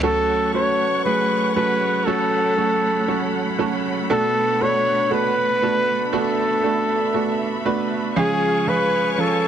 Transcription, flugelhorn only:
0, 0, Header, 1, 2, 480
1, 0, Start_track
1, 0, Key_signature, 3, "minor"
1, 0, Tempo, 1016949
1, 13, Time_signature, 4, 2, 24, 8
1, 4473, End_track
2, 0, Start_track
2, 0, Title_t, "Flugelhorn"
2, 0, Program_c, 0, 56
2, 20, Note_on_c, 0, 69, 99
2, 240, Note_off_c, 0, 69, 0
2, 256, Note_on_c, 0, 73, 93
2, 478, Note_off_c, 0, 73, 0
2, 493, Note_on_c, 0, 71, 90
2, 716, Note_off_c, 0, 71, 0
2, 730, Note_on_c, 0, 71, 96
2, 967, Note_on_c, 0, 69, 88
2, 974, Note_off_c, 0, 71, 0
2, 1690, Note_off_c, 0, 69, 0
2, 1943, Note_on_c, 0, 69, 103
2, 2180, Note_on_c, 0, 73, 101
2, 2187, Note_off_c, 0, 69, 0
2, 2417, Note_off_c, 0, 73, 0
2, 2424, Note_on_c, 0, 71, 102
2, 2880, Note_off_c, 0, 71, 0
2, 2908, Note_on_c, 0, 69, 81
2, 3602, Note_off_c, 0, 69, 0
2, 3862, Note_on_c, 0, 68, 103
2, 4099, Note_on_c, 0, 71, 101
2, 4106, Note_off_c, 0, 68, 0
2, 4305, Note_off_c, 0, 71, 0
2, 4305, Note_on_c, 0, 71, 77
2, 4343, Note_on_c, 0, 69, 93
2, 4350, Note_off_c, 0, 71, 0
2, 4473, Note_off_c, 0, 69, 0
2, 4473, End_track
0, 0, End_of_file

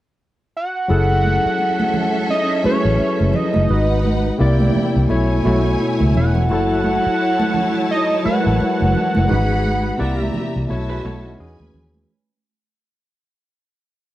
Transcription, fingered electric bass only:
0, 0, Header, 1, 3, 480
1, 0, Start_track
1, 0, Tempo, 699301
1, 618, Time_signature, 4, 2, 24, 8
1, 9710, End_track
2, 0, Start_track
2, 0, Title_t, "Fingered electric bass"
2, 0, Program_c, 0, 33
2, 619, Note_on_c, 0, 30, 101
2, 942, Note_off_c, 0, 30, 0
2, 1956, Note_on_c, 0, 33, 71
2, 2042, Note_off_c, 0, 33, 0
2, 2201, Note_on_c, 0, 30, 70
2, 2285, Note_off_c, 0, 30, 0
2, 2444, Note_on_c, 0, 30, 67
2, 2526, Note_off_c, 0, 30, 0
2, 2542, Note_on_c, 0, 32, 99
2, 2950, Note_off_c, 0, 32, 0
2, 3023, Note_on_c, 0, 36, 86
2, 3226, Note_off_c, 0, 36, 0
2, 3406, Note_on_c, 0, 36, 90
2, 3488, Note_off_c, 0, 36, 0
2, 3504, Note_on_c, 0, 35, 90
2, 3706, Note_off_c, 0, 35, 0
2, 3743, Note_on_c, 0, 35, 78
2, 3946, Note_off_c, 0, 35, 0
2, 4123, Note_on_c, 0, 37, 70
2, 4207, Note_off_c, 0, 37, 0
2, 4225, Note_on_c, 0, 28, 75
2, 4467, Note_off_c, 0, 28, 0
2, 4467, Note_on_c, 0, 30, 106
2, 4788, Note_off_c, 0, 30, 0
2, 5811, Note_on_c, 0, 33, 74
2, 5892, Note_off_c, 0, 33, 0
2, 6054, Note_on_c, 0, 30, 74
2, 6133, Note_off_c, 0, 30, 0
2, 6294, Note_on_c, 0, 30, 69
2, 6373, Note_off_c, 0, 30, 0
2, 6393, Note_on_c, 0, 32, 97
2, 6798, Note_off_c, 0, 32, 0
2, 6868, Note_on_c, 0, 36, 96
2, 7070, Note_off_c, 0, 36, 0
2, 7249, Note_on_c, 0, 36, 78
2, 7331, Note_off_c, 0, 36, 0
2, 7347, Note_on_c, 0, 35, 82
2, 7550, Note_off_c, 0, 35, 0
2, 7584, Note_on_c, 0, 35, 80
2, 7788, Note_off_c, 0, 35, 0
2, 7827, Note_on_c, 0, 40, 85
2, 7943, Note_off_c, 0, 40, 0
2, 7962, Note_on_c, 0, 39, 71
2, 8047, Note_off_c, 0, 39, 0
2, 8058, Note_on_c, 0, 39, 84
2, 8265, Note_off_c, 0, 39, 0
2, 9710, End_track
3, 0, Start_track
3, 0, Title_t, "Muted fingered electric bass strokes"
3, 1000, Note_on_c, 9, 29, 43
3, 1069, Note_off_c, 9, 29, 0
3, 1818, Note_on_c, 9, 29, 41
3, 1887, Note_off_c, 9, 29, 0
3, 2059, Note_on_c, 9, 29, 37
3, 2128, Note_off_c, 9, 29, 0
3, 3265, Note_on_c, 9, 29, 42
3, 3333, Note_off_c, 9, 29, 0
3, 4849, Note_on_c, 9, 29, 47
3, 4917, Note_off_c, 9, 29, 0
3, 5669, Note_on_c, 9, 29, 42
3, 5737, Note_off_c, 9, 29, 0
3, 7111, Note_on_c, 9, 29, 43
3, 7180, Note_off_c, 9, 29, 0
3, 9710, End_track
0, 0, End_of_file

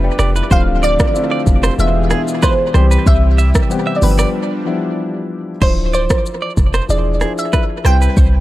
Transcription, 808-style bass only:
0, 0, Header, 1, 2, 480
1, 0, Start_track
1, 0, Tempo, 638298
1, 384, Time_signature, 4, 2, 24, 8
1, 6318, End_track
2, 0, Start_track
2, 0, Title_t, "808-style bass"
2, 0, Program_c, 0, 38
2, 0, Note_on_c, 0, 29, 100
2, 77, Note_off_c, 0, 29, 0
2, 144, Note_on_c, 0, 29, 91
2, 317, Note_off_c, 0, 29, 0
2, 385, Note_on_c, 0, 26, 119
2, 731, Note_off_c, 0, 26, 0
2, 1105, Note_on_c, 0, 29, 99
2, 1278, Note_off_c, 0, 29, 0
2, 1344, Note_on_c, 0, 28, 97
2, 1607, Note_off_c, 0, 28, 0
2, 2064, Note_on_c, 0, 36, 98
2, 2237, Note_off_c, 0, 36, 0
2, 2305, Note_on_c, 0, 36, 116
2, 2651, Note_off_c, 0, 36, 0
2, 3024, Note_on_c, 0, 31, 108
2, 3197, Note_off_c, 0, 31, 0
2, 4224, Note_on_c, 0, 26, 113
2, 4570, Note_off_c, 0, 26, 0
2, 4943, Note_on_c, 0, 29, 100
2, 5117, Note_off_c, 0, 29, 0
2, 5183, Note_on_c, 0, 28, 103
2, 5447, Note_off_c, 0, 28, 0
2, 5904, Note_on_c, 0, 36, 111
2, 6077, Note_off_c, 0, 36, 0
2, 6144, Note_on_c, 0, 36, 108
2, 6318, Note_off_c, 0, 36, 0
2, 6318, End_track
0, 0, End_of_file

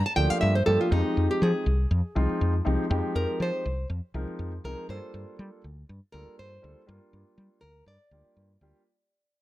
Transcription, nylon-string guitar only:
0, 0, Header, 1, 2, 480
1, 0, Start_track
1, 0, Tempo, 497512
1, 877, Time_signature, 4, 2, 24, 8
1, 9087, End_track
2, 0, Start_track
2, 0, Title_t, "Nylon-string guitar"
2, 0, Program_c, 0, 24
2, 57, Note_on_c, 0, 81, 82
2, 151, Note_off_c, 0, 81, 0
2, 155, Note_on_c, 0, 79, 75
2, 291, Note_off_c, 0, 79, 0
2, 291, Note_on_c, 0, 77, 73
2, 390, Note_off_c, 0, 77, 0
2, 394, Note_on_c, 0, 76, 68
2, 519, Note_off_c, 0, 76, 0
2, 534, Note_on_c, 0, 72, 60
2, 634, Note_off_c, 0, 72, 0
2, 638, Note_on_c, 0, 69, 72
2, 761, Note_off_c, 0, 69, 0
2, 779, Note_on_c, 0, 65, 57
2, 881, Note_off_c, 0, 65, 0
2, 889, Note_on_c, 0, 63, 54
2, 1225, Note_off_c, 0, 63, 0
2, 1262, Note_on_c, 0, 67, 69
2, 1363, Note_off_c, 0, 67, 0
2, 1378, Note_on_c, 0, 68, 62
2, 2768, Note_off_c, 0, 68, 0
2, 3046, Note_on_c, 0, 70, 79
2, 3274, Note_off_c, 0, 70, 0
2, 3303, Note_on_c, 0, 72, 78
2, 3736, Note_off_c, 0, 72, 0
2, 4486, Note_on_c, 0, 70, 75
2, 4713, Note_off_c, 0, 70, 0
2, 4727, Note_on_c, 0, 72, 78
2, 5167, Note_off_c, 0, 72, 0
2, 5908, Note_on_c, 0, 70, 76
2, 6144, Note_off_c, 0, 70, 0
2, 6166, Note_on_c, 0, 72, 76
2, 6607, Note_off_c, 0, 72, 0
2, 7341, Note_on_c, 0, 70, 72
2, 7580, Note_off_c, 0, 70, 0
2, 7600, Note_on_c, 0, 74, 68
2, 8043, Note_off_c, 0, 74, 0
2, 9087, End_track
0, 0, End_of_file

